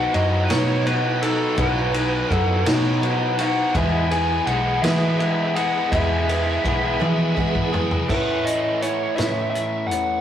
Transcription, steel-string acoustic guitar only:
Already playing: B3 D#4 F#4
0.13 F#3 B3 D#4 F#4
0.48 B2 F#3 B3 D#4 F#4
0.85 F#3 B3 D#4 F#4
1.21 B3 D#4 F#4
1.56 B2 F#3 B3 D#4 F#4
1.92 B3 D#4 F#4
2.29 F#3 B3 D#4 F#4
2.66 B2 F#3 B3 D#4 F#4
3.02 F#3 B3 D#4 F#4
3.38 B3 D#4 F#4
3.74 E2 B2 E3 G#3 B3 G#4
4.10 E3 G#3 B3 G#4
4.47 E3 G#3 B3 G#4
4.83 E2 B2 E3 G#3 B3 G#4
5.20 E3 G#3 B3 G#4
5.55 E3 G#3 B3 G#4
5.92 E2 B2 E3 G#3 B3 G#4
6.29 E3 G#3 B3 G#4
6.64 E3 G#3 B3 G#4
7.00 E2 B2 E3 G#3 B3 G#4
7.37 E3 G#3 B3 G#4
7.72 E3 G#3 B3 G#4
8.08 A2 E3 B3 C#4 E4
8.81 E3 B3 C#4 E4
9.16 A2 E3 B3 C#4 E4
9.90 B3 C#4 E4

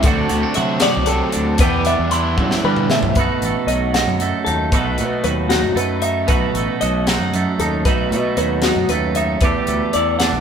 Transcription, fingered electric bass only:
0.04 D2
0.31 D2
0.57 C3
0.97 C2
1.36 D2
1.59 E2
1.99 E2
2.38 G2
2.64 D3
3.02 C2
3.16 B1
3.41 A1
3.66 B1
4.07 F#2
4.46 D#2
4.72 B1
4.99 B2
5.24 D#2
5.63 F#2
5.75 F#2
6.29 B1
6.54 A1
6.82 B1
7.20 F#2
7.59 D#2
7.86 B1
8.11 B2
8.37 D#2
8.76 F#2
8.89 D#2
9.41 E2
9.68 D2
9.95 E2
10.32 B1

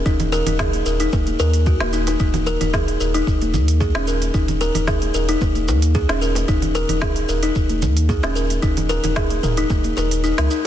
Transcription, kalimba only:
0.06 D#4
0.32 A#4
0.47 D#4
0.59 G#4
0.86 A#4
1.00 D#4
1.40 A#4
1.66 F#4
1.81 A#3
1.93 D#4
2.07 D#4
2.20 D#4
2.47 A#4
2.61 D#4
2.74 G#4
3.00 A#4
3.14 D#4
3.81 G#4
3.95 C#4
4.08 A#4
4.34 D#4
4.61 A#4
4.75 D#4
4.88 G#4
5.14 A#4
5.29 D#4
5.95 G#4
6.09 C#4
6.22 A#4
6.48 D#4
6.75 A#4
6.90 D#4
7.02 G#4
7.29 A#4
7.43 D#4
8.09 G#4
8.23 C#4
8.36 A#4
8.62 D#4
8.89 A#4
9.04 D#4
9.16 G#4
9.43 A#4
9.58 D#4
9.97 A#4
10.24 D#4
10.38 A#4
10.51 D#4

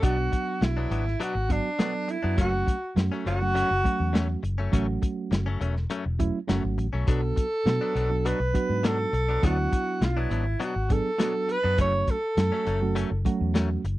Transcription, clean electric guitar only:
0.02 B2 F#3 B3 D4
0.18 muted clean electric guitar stroke
0.32 muted clean electric guitar stroke
0.61 muted clean electric guitar stroke
0.77 F#3 B3 D4
0.90 B2 F#3 B3 D4
1.06 muted clean electric guitar stroke
1.20 B2 F#3 B3 D4
1.35 muted clean electric guitar stroke
1.49 muted clean electric guitar stroke
1.79 B2 F#3 B3 D4
1.94 muted clean electric guitar stroke
2.08 muted clean electric guitar stroke
2.23 F#3 B3 D4
2.37 F#2 F#3 A3 C#4
2.52 muted clean electric guitar stroke
2.67 muted clean electric guitar stroke
2.96 muted clean electric guitar stroke
3.12 F#3 A3 C#4
3.25 F#2 F#3 A3 C#4
3.41 muted clean electric guitar stroke
3.55 F#2 F#3 A3 C#4
3.70 muted clean electric guitar stroke
3.84 muted clean electric guitar stroke
4.13 F#2 F#3 A3 C#4
4.29 muted clean electric guitar stroke
4.43 muted clean electric guitar stroke
4.58 F#3 A3 C#4
4.72 F#2 F#3 A3 C#4
4.88 muted clean electric guitar stroke
5.02 muted clean electric guitar stroke
5.31 muted clean electric guitar stroke
5.46 F#3 A3 C#4
5.60 F#2 F#3 A3 C#4
5.76 muted clean electric guitar stroke
5.90 F#2 F#3 A3 C#4
6.19 muted clean electric guitar stroke
6.48 F#2 F#3 A3 C#4
6.64 muted clean electric guitar stroke
6.78 muted clean electric guitar stroke
6.93 F#3 A3 C#4
7.07 B2 F#3 B3 D4
7.22 muted clean electric guitar stroke
7.36 muted clean electric guitar stroke
7.66 muted clean electric guitar stroke
7.81 F#3 B3 D4
7.95 B2 F#3 B3 D4
8.11 muted clean electric guitar stroke
8.25 B2 F#3 B3 D4
8.41 muted clean electric guitar stroke
8.55 muted clean electric guitar stroke
8.83 B2 F#3 B3 D4
8.99 muted clean electric guitar stroke
9.13 muted clean electric guitar stroke
9.29 F#3 B3 D4
9.43 B2 F#3 B3 D4
9.58 muted clean electric guitar stroke
9.72 muted clean electric guitar stroke
10.01 muted clean electric guitar stroke
10.17 F#3 B3 D4
10.30 B2 F#3 B3 D4
10.46 muted clean electric guitar stroke
10.60 B2 F#3 B3 D4
10.75 muted clean electric guitar stroke
10.89 muted clean electric guitar stroke
11.18 B2 F#3 B3 D4
11.34 muted clean electric guitar stroke
11.49 muted clean electric guitar stroke
11.63 F#3 B3 D4
11.78 F#2 F#3 A3 C#4
11.94 muted clean electric guitar stroke
12.08 muted clean electric guitar stroke
12.37 muted clean electric guitar stroke
12.52 F#3 A3 C#4
12.66 F#2 F#3 A3 C#4
12.81 muted clean electric guitar stroke
12.95 F#2 F#3 A3 C#4
13.11 muted clean electric guitar stroke
13.25 muted clean electric guitar stroke
13.54 F#2 F#3 A3 C#4
13.85 muted clean electric guitar stroke

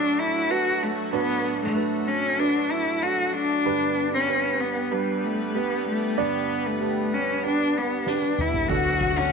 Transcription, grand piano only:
Already playing: A2 D4 F#4 A4
0.50 D4 F#4 B4
1.13 A2 D4 F#4 B4
1.75 D4 F#4 B4
2.38 D4 F#4 B4
3.02 D4 F#4 A4
3.65 G2 D3 D4 G4 B4
4.28 B3 G4 B4
4.91 D4 G4 B4
5.55 D4 G4 B4
6.18 G2 D3 D4 G4 D5
6.81 D4 G4 B4
7.43 D4 G4 B4
8.06 D4 G4 B4
8.70 A2 D4 F#4 A4

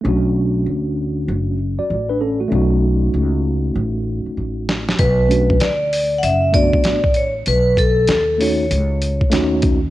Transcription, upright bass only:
0.05 B1
0.66 D2
1.28 F#1
1.79 muted upright bass stroke
1.90 A1
2.52 B1
3.14 C#2
3.76 A1
4.26 muted upright bass stroke
4.37 A1
4.99 B1
5.61 D2
6.23 F#1
6.74 muted upright bass stroke
6.85 A1
7.47 B1
8.09 D#2
8.71 C#2
9.21 muted upright bass stroke
9.32 D#2

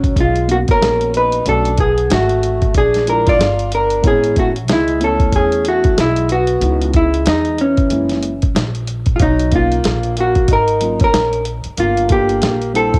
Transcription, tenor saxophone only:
Already playing: F#3
0.18 G#3
0.51 A#3
0.71 C#4
1.16 D#4
1.48 D4
1.80 B3
2.13 A3
2.77 D4
3.09 D4
3.28 F4
3.73 D4
4.06 C#4
4.38 A3
4.70 G#3
5.03 C#4
5.36 C#4
5.68 A3
6.00 G#3
6.32 B3
6.96 G#3
7.29 G#3
7.61 E3
9.15 G#3
9.20 F#3
9.53 A#3
10.17 A#3
10.50 D#4
11.01 C#4
11.78 A#3
12.09 A#3
12.74 C4

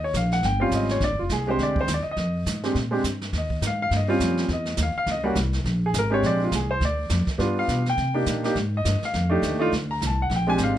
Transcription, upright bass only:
Already playing: D#2
0.14 A#1
0.42 G1
0.71 G#1
1.01 A#1
1.10 G#1
1.20 F1
1.29 C2
1.58 D2
1.88 D#2
2.06 muted upright bass stroke
2.17 F2
2.46 G#2
2.75 A#2
3.04 G2
3.32 D#2
3.61 G#2
3.91 G2
4.20 F2
4.48 E2
4.78 D#2
4.95 muted upright bass stroke
5.07 C#2
5.36 C2
5.64 A#1
5.94 G#1
6.22 A#1
6.52 C2
6.80 D2
7.10 F2
7.27 muted upright bass stroke
7.38 G2
7.68 B2
7.98 C3
8.26 A#2
8.55 G#2
8.85 G2
9.02 muted upright bass stroke
9.14 F2
9.42 D#2
9.71 D2
10.01 C2
10.30 A#1
10.58 G#1

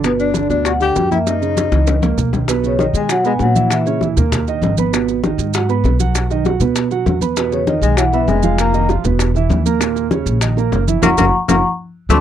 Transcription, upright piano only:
0.03 B2 B3
0.34 D3 D4
0.49 B2 B3
0.80 D3 D4
0.95 F#3 F#4
1.10 A#3 A#4
1.41 C#3 C#4
1.72 E3 D#4
2.03 A#3 A#4
2.32 D#3 D#4
2.48 B2 B3 B4
2.79 D#3 D#4 D#5
3.09 F#3 F#4 F#5
3.24 B3 B4 B5
3.55 E3 E4 E5
3.86 C#3 C#4 C#5
4.01 E3 E4 E5
4.17 A#2 A#3 A#4
4.48 D#3 D#4 D#5
4.78 B3 B4 B5
4.93 B2 B3 B4
5.24 D#3 D#4 D#5
5.54 F#3 F#4 F#5
5.69 B3 B4 B5
6.00 F#3 F#4 F#5
6.30 D#3 D#4 D#5
6.46 F#3 F#4 F#5
6.61 B2 B3 B4
6.91 F#3 F#4 F#5
7.21 B3 B4 B5
7.37 B2 B3 B4
7.67 D#3 D#4 D#5
7.98 E3 E4 E5
8.13 B3 B4 B5
8.44 F3 F4 F5
8.73 D#3 D#4 D#5
8.90 F3 F4 F5
9.05 B2 B3 B4
9.36 E3 E4 E5
9.66 A#3 A#4 A#5
9.80 A#2 A#3 A#4
10.11 C#3 C#4 C#5
10.42 D#3 D#4 D#5
10.57 A#3 A#4 A#5
10.88 E3 E4 E5
11.02 C#4 E4 F#4
11.17 C#4 E4 F#4
11.49 C#4 E4 F#4
12.09 C4 D4 F#4

